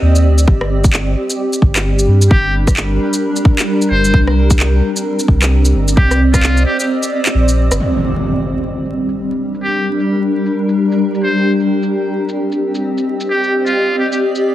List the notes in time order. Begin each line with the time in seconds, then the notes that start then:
Already playing: C4 G4 D5 D#5
0.02 D#2
0.15 shaker
0.24 D2
0.38 shaker
0.48 G1 G3, kick
0.61 cross-stick
0.84 kick, shaker
0.93 clap
0.98 D4
1.30 shaker
1.53 shaker
1.62 G1, kick
1.76 A#4, cross-stick, clap, shaker
1.99 shaker
2.08 G2
2.22 shaker
2.31 G1 G4, kick
2.67 kick, cross-stick, shaker
2.77 clap
3.13 shaker
3.36 shaker
3.45 kick
3.59 clap, shaker
3.82 shaker
3.90 G1 C5
4.05 shaker
4.14 C2 C4, kick
4.27 cross-stick
4.50 kick, shaker
4.58 D5, clap
4.96 shaker
5.11 D#5
5.19 shaker
5.28 C2, kick
5.42 cross-stick, clap, shaker
5.65 shaker
5.74 G1
5.88 shaker
5.97 C2 G4, kick
6.11 cross-stick, shaker
6.33 F4, kick, cross-stick, shaker
6.43 clap
6.57 shaker
6.65 G4
6.79 G4, shaker
7.03 shaker
7.26 clap, shaker
7.34 A#1
7.48 shaker
7.71 G1, cross-stick, shaker
7.80 G3, impact
7.94 shaker
8.00 D4 G4
8.17 shaker
8.63 shaker
8.86 A#4, shaker
9.09 shaker
9.31 shaker
9.54 shaker
9.63 G4
9.77 shaker
10.00 shaker
10.46 shaker
10.69 shaker
10.92 shaker
11.14 shaker
11.23 C5
11.37 shaker
11.46 C4
11.60 shaker
11.83 shaker
12.19 D#5
12.29 D5, shaker
12.52 shaker
12.75 shaker
12.98 shaker
13.20 shaker
13.30 G4
13.44 shaker
13.66 F4, shaker
13.98 G4
14.12 G4, shaker
14.35 shaker